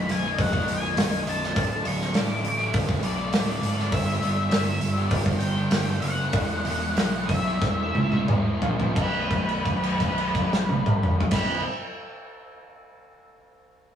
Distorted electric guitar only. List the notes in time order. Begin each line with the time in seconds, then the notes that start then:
Already playing: B1
0.08 muted distorted electric guitar stroke
0.22 B2 F#3 D#4
0.52 B2 F#3 D#4
0.81 B2 F#3 D#4
0.95 B1 F#2 B2 F#3 D#4
1.10 B2 F#3 D#4
1.25 F#2 B2 F#3 D#4
1.41 B2 F#3 D#4
1.54 D2 A2 D3 F#3 A3 D4
1.83 D3 F#3 A3 D4
2.13 D2 A2 D3 F#3 A3 D4
2.28 D3 F#3 A3 D4
2.43 muted distorted electric guitar stroke
2.57 D3 F#3 A3 D4
2.86 D3 F#3 A3 D4
3.17 D3 F#3 A3 D4
3.31 D2 A2 D3 F#3 A3 D4
3.47 D3 F#3 A3 D4
3.61 D3 F#3 A3 D4
3.76 D3 F#3 A3 D4
3.90 G2 D3 G3 B3 D4 G4
4.20 G3 B3 D4 G4
4.49 G2 D3 G3 B3 D4 G4
4.65 G3 B3 D4 G4
4.81 muted distorted electric guitar stroke
4.96 G3 B3 D4 G4
5.26 G3 B3 D4 G4
5.56 G3 B3 D4 G4
5.71 G2 D3 G3 B3 D4 G4
5.86 G3 B3 D4 G4
6.02 G3 B3 D4 G4
6.19 G3 B3 D4 G4
6.32 E2 B2 E3 G3 B3 E4
6.64 E3 G3 B3 E4
6.96 E2 B2 E3 G3 B3 E4
7.13 E3 G3 B3 E4
7.29 muted distorted electric guitar stroke
7.45 E3 G3 B3 E4
7.77 E3 G3 B3 E4
8.11 E3 G3 B3 E4
8.27 E2 B2 E3 G3 B3 E4
8.44 E3 G3 B3 E4
8.62 E3 G3 B3 E4
8.78 E3 G3 B3 E4
8.94 B1 F#2
8.99 B2
11.31 B1 F#2
11.36 B2